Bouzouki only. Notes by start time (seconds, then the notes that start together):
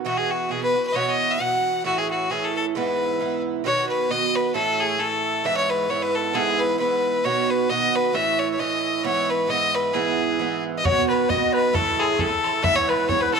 0.05 B2 E3 B3 F#4
0.49 B2 E3 B3 F#4
0.74 E3 B3 F#4
0.94 B2 E3 B3 F#4
1.38 B2 E3 B3 F#4
1.85 A2 E3 C#4 E4
2.29 A2 E3 C#4 E4
2.75 G#2 E3 B3 E4
3.20 G#2 E3 B3 E4
3.64 B2 D#3 B3 F#4
4.09 B2 D#3 B3 F#4
4.54 A2 E3 C#4 E4
4.99 A2 E3 C#4 E4
5.44 G#2 E3 B3 E4
5.89 G#2 E3 B3 E4
6.33 G#2 E3 B3 E4
6.78 G#2 E3 B3 E4
7.24 B2 D#3 B3 F#4
7.70 B2 D#3 B3 F#4
8.13 A2 E3 C#4 E4
8.58 A2 E3 C#4 E4
9.03 G#2 E3 B3 E4
9.47 G#2 E3 B3 E4
9.93 G#2 E3 B3 E4
10.39 G#2 E3 B3 E4
10.84 B2 D#3 B3 F#4
11.28 B2 D#3 B3 F#4
11.73 A2 E3 C#4 E4
12.17 A2 E3 C#4 E4
12.63 G#2 E3 B3 E4
13.08 G#2 E3 B3 E4
13.33 E3 B3 E4